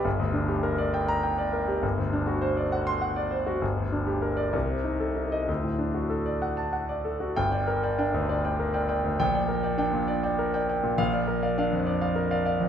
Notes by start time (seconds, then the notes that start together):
0.05 G1
0.19 D2
0.33 D4
0.49 G4
0.63 A#4
0.78 D5
0.94 G5
1.08 A#5
1.23 G5
1.38 D5
1.53 A#4
1.68 G4
1.83 G1
1.97 D2
2.13 D4
2.27 F#4
2.42 C5
2.57 D5
2.72 F#5
2.87 C6
3.01 F#5
3.16 D5
3.31 C5
3.47 F#4
3.61 G1
3.77 D2
3.92 D4
4.07 G4
4.22 A#4
4.37 D5
4.53 C2
4.69 C3
4.84 D#4
5.00 A4
5.16 D#4
5.32 D#5
5.48 D2
5.63 A2
5.79 D4
5.94 F#4
6.10 A4
6.26 D5
6.42 F#5
6.57 A5
6.73 F#5
6.89 D5
7.05 A4
7.20 F#4
7.36 G1 G5
7.52 D5 G5
7.67 A#4
7.83 D5 G5
7.98 D4 D5 G5
8.14 D2
8.29 D5
8.45 D5 G5
8.59 A#4
8.74 D5 G5
8.88 D5 G5
9.04 D2
9.19 A#1 G5
9.34 D5 G5
9.48 A#4
9.63 D5 G5
9.78 D4 D5 G5
9.93 A#2
10.08 D5
10.23 D5 G5
10.39 A#4
10.54 D5 G5
10.69 D5 G5
10.83 A#2
10.98 A#1 F5
11.13 D5 F5
11.28 A#4
11.43 D5 F5
11.58 D4 D5 F5
11.72 F2
11.87 D5
12.01 D5 F5
12.15 A#4
12.31 D5 F5
12.45 D5 F5
12.60 F2